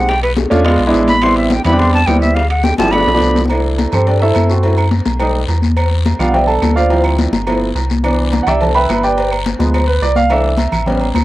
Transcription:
Already playing: B1 F#5
0.08 G5, high bongo, high conga, high timbale, long guiro
0.23 B4, high bongo, high conga, high timbale, claves
0.37 high bongo, high conga, low timbale, short guiro
0.50 E2 A3 C#4 D4 F4, high bongo, high conga, high timbale, short guiro
0.64 G#3 B3 D4 F4, high bongo, high conga, high timbale, long guiro, claves
0.79 B1, high conga, high timbale
0.87 G#3 B3 D4 E4
0.93 A1, high bongo, low bongo, high conga, low timbale, short guiro
1.08 B5, high bongo, high conga, high timbale, short guiro
1.22 G3 B3 C4 E4 C6, high bongo, high conga, high timbale, long guiro, claves
1.36 E5, high bongo, high timbale
1.50 G5, high bongo, high conga, high timbale, low timbale, short guiro
1.65 E2 G3 B3 C4 E4 B5, high bongo, low conga, high timbale, short guiro, claves
1.72 G3 B3 C4 D4
1.79 C6, high bongo, high conga, low conga, long guiro
1.93 A5, high conga, high timbale
2.06 D2 G3 B3 C4 E4 G5, high bongo, low bongo, high conga, high timbale, low timbale, short guiro, claves
2.21 E5, high bongo, high conga, short guiro
2.35 F5, high bongo, high conga, high timbale, long guiro
2.50 F#5, high bongo, high conga, high timbale, claves
2.64 G5, high bongo, high conga, low timbale, short guiro
2.78 G1 F3 G3 C4 E4 A5, high bongo, high conga, high timbale, short guiro
2.88 B5, high bongo, high conga
2.93 F3 A3 B3 D4, high timbale, long guiro, claves
2.98 high bongo
3.06 B1, high conga, high timbale
3.14 F3 A3 B3 D4, low bongo
3.21 C2, high conga, short guiro
3.35 high conga, low timbale, short guiro
3.45 low bongo
3.49 A3 D4 E4, cowbell, high conga, low agogo, long guiro, claves
3.65 high conga
3.78 cowbell, high conga, low timbale, low agogo, short guiro
3.92 G2 C4 G4 A4 C5, low conga, low agogo, short guiro, claves
4.07 D4 G4 A4 D5, cowbell, high conga, long guiro
4.20 E4 A4 C5 E5, high conga, low agogo
4.34 F#2, cowbell, high conga, low timbale, low agogo, short guiro, claves
4.49 C4 F#4 A4 C5, short guiro
4.63 A3 C4 E4, cowbell, high conga, low agogo, long guiro
4.78 high conga, low agogo, claves
4.91 cowbell, high conga, low timbale, short guiro
5.05 B1, high conga, low agogo, short guiro
5.19 G3 A3 D#4, cowbell, high conga, low agogo, long guiro, claves
5.35 high conga
5.48 E2, cowbell, high conga, low timbale, low agogo, short guiro
5.62 high conga, short guiro
5.77 cowbell, low agogo, long guiro, claves
5.91 high conga
6.05 cowbell, high conga, low timbale, low agogo, short guiro
6.19 B1 G3 B3 D4 F4 F5, low conga, low agogo, short guiro, claves
6.29 F#5
6.34 G4 D5 E5 G5, cowbell, high conga, low conga, long guiro
6.47 A4 A5, high conga, low agogo
6.62 D2, cowbell, high conga, low timbale, low agogo, short guiro, claves
6.76 F4 C5 D5 F5, short guiro
6.90 F3 G3 C4 E4, cowbell, high conga, low agogo, long guiro
7.04 high conga, low agogo, claves
7.18 cowbell, high conga, low timbale, short guiro
7.32 G1, high conga, low agogo, short guiro
7.47 F3 A3 B3 E4, cowbell, high conga, low agogo, long guiro, claves
7.62 high conga
7.75 C2, cowbell, high conga, low timbale, low agogo, short guiro
7.90 high conga, short guiro
8.03 E3 B3 D4, cowbell, low agogo, long guiro, claves
8.19 high conga
8.32 cowbell, high conga, low timbale, low agogo, short guiro
8.43 C2 F#5, low agogo, short guiro, claves
8.47 G4 D5 E5 G5, low conga
8.61 A4 A5, cowbell, high conga, low conga, long guiro
8.75 B4 E5 G5 B5, high conga, low agogo
8.89 G1, cowbell, high conga, low timbale, low agogo, short guiro, claves
9.03 G4 B4 D5 G5, short guiro
9.17 cowbell, high conga, low agogo, long guiro
9.31 high conga, low agogo, claves
9.46 cowbell, high conga, low timbale, short guiro
9.59 D2 F3 G#3 B3, high conga, low agogo, short guiro
9.73 cowbell, high conga, low agogo, long guiro, claves
9.87 B4, high conga
10.01 C2 D5, cowbell, high conga, low timbale, low agogo, short guiro
10.16 F5, high conga, short guiro
10.30 E3 A3 D4 E5, cowbell, high conga, low agogo, long guiro, claves
10.44 high conga
10.57 cowbell, high conga, low timbale, low agogo, short guiro
10.72 A1, low conga, low agogo, short guiro, claves
10.86 G3 B3 C#4, cowbell, high conga, low conga, long guiro
11.01 high conga, low agogo
11.15 D2, cowbell, high conga, low timbale, low agogo, short guiro, claves

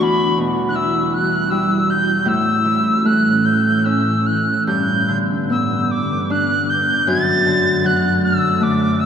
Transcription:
Already playing: A3 D4 F#4
0.01 E2 G3 E4 B5
0.38 B2
0.68 F#6
0.74 E3 E6
1.13 F#6
1.50 G3 E6
1.90 G6
2.25 A2 E3 C#4 E6
2.65 E3
3.05 A3 F#6
3.45 G6
3.85 C#4 E6
4.26 F#6
4.65 G2 D3 B3 G6
5.08 D3
5.50 B3 E6
5.91 D6
6.30 D4 F#6
6.69 G6
7.06 F#2 A3 A6
7.46 D3
7.84 F#3 F#6
8.24 E6
8.61 A3 D6
8.99 E6

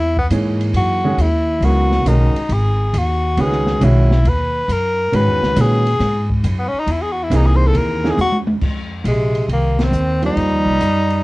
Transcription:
Already playing: E2 E4
0.17 B3, kick
0.30 G#2 E3 A#3 D#4 G#4 C#5, hi-hat pedal, ride
0.60 ride
0.73 F#2 F#4, ride
1.04 D#3 G#3 C#4 F#4 G#4
1.17 D#2 E4, hi-hat pedal, ride
1.61 C#2 C#3 F#3 B3 E4 A#4, ride
1.65 F#4
1.92 snare
2.05 B1 D#3 G#3 C#4 D#4 F#4 A#4, hi-hat pedal, ride
2.36 ride
2.49 G#1, ride
2.53 G#4
2.93 D#2, hi-hat pedal, ride
2.98 F#4
3.37 C#2 D#3 G#3 C#4 F#4 G#4 B4, ride
3.52 snare
3.66 snare
3.81 B1 D#3 G#3 C#4 E4 F#4 C#5, hi-hat pedal, ride
4.11 snare
4.24 D#2, ride
4.29 B4
4.68 F#2, hi-hat pedal, ride
4.72 A#4
5.12 G#2 D#3 G#3 C#4 F#4 B4, ride
5.27 E2
5.42 C#2, snare
5.56 A#2 D#3 G#3 C#4 F#4 B4, hi-hat pedal, ride
5.61 G#4
5.87 ride
5.99 G#2, snare, ride
6.30 kick
6.44 F#2, hi-hat pedal, ride
6.59 B3
6.68 C#4
6.73 muted upright bass stroke
6.80 D#4
6.86 E2, ride
6.91 E4
7.02 G#4
7.12 F#4
7.23 E4
7.30 C2 E3 A#3 C4 D#4 G#4, hi-hat pedal, ride
7.36 D#4
7.46 G#4
7.56 C5
7.67 A4
7.73 D#2, ride
7.77 A#4
8.04 E3 A#3 C4 D#4 G#4, snare
8.10 G#4
8.17 E2 F#4, hi-hat pedal, high tom
8.32 high tom
8.47 high tom
8.61 F2, kick, crash
9.04 A#1 C3 G#3, hi-hat pedal, ride
9.35 ride
9.48 C2 D#3, ride
9.53 A#3
9.79 D#3, snare, ride
9.83 C4
9.92 D#2, hi-hat pedal
10.22 F3 G3 A#3 D#4 G4 C5, ride
10.36 F2, ride
10.51 D#2
10.66 C2
10.80 F#2, hi-hat pedal, ride
11.10 ride

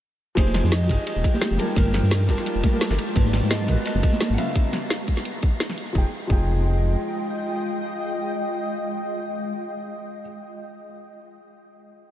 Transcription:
0.35 F1 F3 G#3 D#4 G4 G#4 C5 G5, kick, closed hi-hat, ride, high conga
0.46 snare
0.54 snare, closed hi-hat, ride
0.64 F2, snare
0.72 D#5, snare, closed hi-hat, ride
0.82 snare, high bongo
0.88 F1 F3 D#4 G4 G#4, kick, closed hi-hat, ride
1.07 D#5, closed hi-hat, ride
1.16 D#1
1.24 kick, closed hi-hat, ride
1.34 G4, snare, high conga
1.41 snare, closed hi-hat, ride
1.51 F1, snare, high conga
1.57 G3 F4 G#4 A#4 A5, closed hi-hat, ride, high bongo
1.76 G1 G3 A#3 F4 A#4 A5, kick, closed hi-hat, ride, high conga
1.94 A#4, snare, closed hi-hat, ride
2.03 G2, snare
2.11 snare, closed hi-hat, ride
2.20 high bongo
2.27 G1 G3 F4 A#4 A5, kick, snare, closed hi-hat, ride
2.38 snare
2.46 closed hi-hat, ride
2.55 F1
2.63 kick, closed hi-hat, ride, high conga
2.72 G3 F4 A4 A#4
2.81 snare, closed hi-hat, ride
2.89 G1 G3 F4 A4 A#4, snare
2.99 closed hi-hat, ride
3.16 G#1 G#3 B3 F#4 B4 A#5, kick, closed hi-hat, ride, high conga
3.25 snare
3.33 snare, closed hi-hat, ride
3.43 G#2, snare
3.51 D#5, snare, closed hi-hat, ride
3.60 snare, high bongo
3.67 G#1 G#3 F#4 A#4 B4, kick, closed hi-hat, ride
3.86 D#5, closed hi-hat, ride
3.95 F#1
4.03 kick, closed hi-hat, ride
4.13 snare, high conga
4.21 snare, closed hi-hat, ride
4.30 G#1, snare, high conga
4.34 C#3 B3 F#5, closed hi-hat, ride
4.38 E4 E5 F5, high bongo
4.56 kick, closed hi-hat
4.73 snare, closed hi-hat
4.90 snare, closed hi-hat
5.08 kick, closed hi-hat
5.17 snare
5.25 closed hi-hat
5.43 kick, closed hi-hat
5.60 snare, closed hi-hat
5.70 snare
5.78 closed hi-hat
5.93 F1 F3 G#3 D#4 F4 G#4 D#5 G5, kick
5.98 G5
6.27 F1 F3 D#4 G#4, kick
6.32 G5

